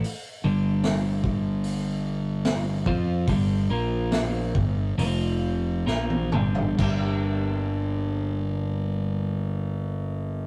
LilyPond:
<<
  \new Staff \with { instrumentName = "Clean electric guitar" } { \clef bass \time 4/4 \key g \minor \tempo 4 = 69 r8 <g, d g>2. <f c' f'>8 | <g, d g>8 <bes, f bes>4 <g, d>8 <f, c f>4 <bes, f bes>8 <g, d g>8 | <g, d g bes d' g'>1 | }
  \new Staff \with { instrumentName = "Fingered electric bass" } { \clef bass \time 4/4 \key g \minor r8 g,,2. f,8 | g,,8 bes,,4 g,,8 f,,4 bes,,8 g,,8 | g,,1 | }
  \new DrumStaff \with { instrumentName = "Drums" } \drummode { \time 4/4 hho4 <hho sn>8 bd8 hho4 <hho sn>8 bd8 | <hho bd>4 <hho sn>8 bd8 hho4 sn16 tommh16 toml16 tomfh16 | <cymc bd>4 r4 r4 r4 | }
>>